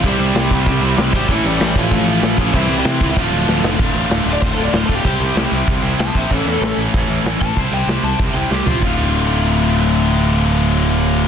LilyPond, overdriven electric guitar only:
\new Staff \with { instrumentName = "Overdriven electric guitar" } { \time 4/4 \key d \minor \tempo 4 = 191 <g g'>2. r8 <g g'>8 | <e e'>8 <g g'>4 <f f'>2~ <f f'>8 | <e e'>8. <g g'>16 <e e'>8. <e e'>16 <f f'>4. r8 | r4 \tuplet 3/2 { r4 d''8 c''8 a'8 d''8 c''8 a'8 g'8~ } |
g'4. r4. <c'' a''>8 <e'' g''>8 | <cis' a'>8 a'4 r2 a''8 | r8 g''8 g'8 a''8 r8 g''8 g'8 f'8 | r1 |
r1 | }